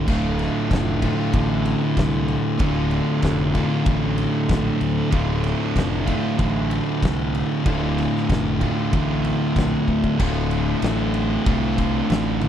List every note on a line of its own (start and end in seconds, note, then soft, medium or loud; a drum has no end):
0.07 0.47 D1 loud
0.07 1.05 D2 medium
0.07 1.00 A2 loud
0.07 1.04 D3 medium
0.07 1.03 A3 medium
0.07 1.02 F4 medium
0.07 kick loud
0.07 crash loud
0.39 snare soft
0.39 ride medium
0.70 1.10 F1 medium
0.70 kick medium
0.70 snare loud
0.70 ride loud
1.02 2.58 D2 medium
1.02 2.59 A2 medium
1.02 2.60 D3 medium
1.02 2.61 A3 medium
1.02 2.61 F4 medium
1.02 kick medium
1.02 ride medium
1.32 1.73 A1 loud
1.32 2.60 D2 medium
1.32 2.58 A2 medium
1.32 2.62 D3 medium
1.32 kick loud
1.32 ride loud
1.65 ride medium
1.97 2.36 C2 medium
1.97 kick medium
1.97 snare loud
1.97 ride loud
2.28 ride medium
2.59 2.99 D1 medium
2.59 3.57 D2 loud
2.59 3.53 A2 medium
2.59 3.55 D3 loud
2.59 3.54 A3 loud
2.59 3.53 F4 loud
2.59 kick loud
2.59 ride loud
2.91 ride medium
3.22 3.62 F1 loud
3.22 kick medium
3.22 snare loud
3.22 ride loud
3.54 5.11 D2 medium
3.54 5.10 A2 medium
3.54 5.12 D3 medium
3.54 5.12 A3 medium
3.54 5.13 F4 medium
3.54 kick medium
3.54 ride medium
3.85 4.25 A1 loud
3.85 5.12 D2 medium
3.85 5.11 A2 medium
3.85 5.14 D3 medium
3.85 kick loud
3.85 ride loud
4.18 ride medium
4.49 4.69 A#1 medium
4.49 kick medium
4.49 snare loud
4.49 ride loud
4.81 5.01 D2 loud
4.81 ride medium
5.11 5.52 D1 medium
5.11 6.08 D2 loud
5.11 6.05 A2 loud
5.11 6.06 D3 loud
5.11 6.06 A3 loud
5.11 6.05 F4 medium
5.11 kick loud
5.11 ride loud
5.44 snare soft
5.44 ride medium
5.76 6.15 F1 loud
5.76 kick medium
5.76 snare loud
5.76 ride loud
6.06 7.65 D2 medium
6.06 7.64 A2 medium
6.06 7.66 D3 medium
6.06 7.67 A3 medium
6.06 7.67 F4 medium
6.06 kick medium
6.06 ride medium
6.37 6.79 A1 loud
6.37 7.64 D2 medium
6.37 7.63 A2 medium
6.37 7.66 D3 medium
6.37 kick loud
6.37 ride loud
6.71 ride medium
7.02 7.42 C2 medium
7.02 kick medium
7.02 snare loud
7.02 ride loud
7.35 ride medium
7.65 8.05 D1 loud
7.65 8.59 D2 medium
7.65 8.59 A2 loud
7.65 8.59 D3 medium
7.65 8.59 A3 medium
7.65 8.59 F4 loud
7.65 kick loud
7.65 ride loud
7.98 snare soft
7.98 ride medium
8.16 snare soft
8.29 8.69 F1 medium
8.29 kick medium
8.29 snare loud
8.29 ride loud
8.61 10.18 D2 medium
8.61 10.18 A2 medium
8.61 10.18 D3 medium
8.61 10.17 A3 medium
8.61 10.17 F4 medium
8.61 kick medium
8.61 ride medium
8.92 9.32 A1 loud
8.92 10.17 D2 medium
8.92 10.17 A2 medium
8.92 10.18 D3 medium
8.92 kick loud
8.92 ride loud
9.24 ride medium
9.56 9.76 A#1 medium
9.56 kick medium
9.56 snare loud
9.56 ride loud
9.87 10.07 D2 medium
9.87 kick medium
10.04 kick medium
10.19 10.73 D1 medium
10.19 11.45 D2 loud
10.19 11.44 A2 loud
10.19 11.47 D3 loud
10.19 11.47 A3 loud
10.19 11.48 F4 loud
10.19 kick loud
10.19 crash loud
10.51 ride medium
10.82 11.36 A1 loud
10.82 snare loud
10.82 ride loud
11.14 ride medium
11.46 12.00 C2 medium
11.46 12.48 D2 medium
11.46 12.48 A2 medium
11.46 12.48 D3 medium
11.46 12.48 A3 medium
11.46 12.48 F4 medium
11.46 kick loud
11.46 ride loud
11.78 kick medium
11.78 ride medium
12.10 12.48 A1 medium
12.10 snare loud
12.10 ride loud
12.41 12.48 D2 medium
12.41 12.48 A2 medium
12.41 12.48 D3 medium
12.41 ride medium